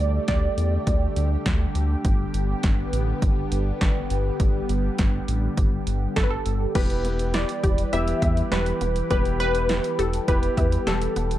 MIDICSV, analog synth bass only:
0, 0, Header, 1, 2, 480
1, 0, Start_track
1, 0, Key_signature, 1, "minor"
1, 0, Tempo, 588235
1, 1670, Time_signature, 4, 2, 24, 8
1, 9291, End_track
2, 0, Start_track
2, 0, Title_t, "Analog synth bass"
2, 0, Program_c, 0, 38
2, 0, Note_on_c, 0, 38, 98
2, 158, Note_off_c, 0, 38, 0
2, 232, Note_on_c, 0, 38, 103
2, 399, Note_off_c, 0, 38, 0
2, 469, Note_on_c, 0, 40, 99
2, 638, Note_off_c, 0, 40, 0
2, 709, Note_on_c, 0, 38, 106
2, 877, Note_off_c, 0, 38, 0
2, 950, Note_on_c, 0, 38, 102
2, 1118, Note_off_c, 0, 38, 0
2, 1190, Note_on_c, 0, 38, 105
2, 1358, Note_off_c, 0, 38, 0
2, 1430, Note_on_c, 0, 38, 99
2, 1598, Note_off_c, 0, 38, 0
2, 1670, Note_on_c, 0, 31, 113
2, 1838, Note_off_c, 0, 31, 0
2, 1910, Note_on_c, 0, 31, 95
2, 2078, Note_off_c, 0, 31, 0
2, 2152, Note_on_c, 0, 31, 95
2, 2319, Note_off_c, 0, 31, 0
2, 2390, Note_on_c, 0, 33, 93
2, 2558, Note_off_c, 0, 33, 0
2, 2629, Note_on_c, 0, 31, 101
2, 2797, Note_off_c, 0, 31, 0
2, 2869, Note_on_c, 0, 31, 97
2, 3037, Note_off_c, 0, 31, 0
2, 3110, Note_on_c, 0, 31, 95
2, 3278, Note_off_c, 0, 31, 0
2, 3350, Note_on_c, 0, 31, 94
2, 3518, Note_off_c, 0, 31, 0
2, 3589, Note_on_c, 0, 31, 107
2, 3758, Note_off_c, 0, 31, 0
2, 3829, Note_on_c, 0, 31, 103
2, 3998, Note_off_c, 0, 31, 0
2, 4072, Note_on_c, 0, 31, 103
2, 4239, Note_off_c, 0, 31, 0
2, 4310, Note_on_c, 0, 33, 84
2, 4478, Note_off_c, 0, 33, 0
2, 4549, Note_on_c, 0, 31, 106
2, 4717, Note_off_c, 0, 31, 0
2, 4790, Note_on_c, 0, 31, 97
2, 4958, Note_off_c, 0, 31, 0
2, 5030, Note_on_c, 0, 31, 106
2, 5198, Note_off_c, 0, 31, 0
2, 5270, Note_on_c, 0, 31, 99
2, 5438, Note_off_c, 0, 31, 0
2, 5510, Note_on_c, 0, 28, 101
2, 6080, Note_off_c, 0, 28, 0
2, 6230, Note_on_c, 0, 28, 104
2, 6398, Note_off_c, 0, 28, 0
2, 6470, Note_on_c, 0, 28, 109
2, 6638, Note_off_c, 0, 28, 0
2, 6708, Note_on_c, 0, 40, 107
2, 6877, Note_off_c, 0, 40, 0
2, 6950, Note_on_c, 0, 28, 104
2, 7118, Note_off_c, 0, 28, 0
2, 7190, Note_on_c, 0, 28, 101
2, 7358, Note_off_c, 0, 28, 0
2, 7430, Note_on_c, 0, 28, 110
2, 8000, Note_off_c, 0, 28, 0
2, 8150, Note_on_c, 0, 28, 100
2, 8318, Note_off_c, 0, 28, 0
2, 8389, Note_on_c, 0, 28, 97
2, 8557, Note_off_c, 0, 28, 0
2, 8628, Note_on_c, 0, 40, 97
2, 8797, Note_off_c, 0, 40, 0
2, 8870, Note_on_c, 0, 28, 102
2, 9038, Note_off_c, 0, 28, 0
2, 9110, Note_on_c, 0, 28, 100
2, 9278, Note_off_c, 0, 28, 0
2, 9291, End_track
0, 0, End_of_file